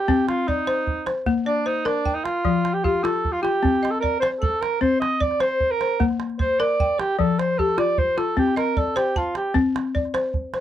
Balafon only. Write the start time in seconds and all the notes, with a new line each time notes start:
Already playing: A5
0.08 C4
0.48 D5
0.67 C5
1.06 C5
1.26 A#3
1.46 D5
1.66 C5
1.85 A#4
2.05 G5
2.45 F3
2.84 G4
3.04 F4
3.43 F4
3.63 C4
3.83 D#5
4.03 D5
4.22 C5
4.42 A5
4.81 C4
5.20 D5
5.41 C5
5.81 C5
6.00 A#3
6.39 C5
6.60 A#4
6.80 G5
7.19 F3
7.59 G4
7.78 F4
8.18 F4
8.37 C4
8.56 D#5
8.77 D5
8.96 C5
9.16 A5
9.54 C4
9.95 D5
10.14 C5
10.54 C5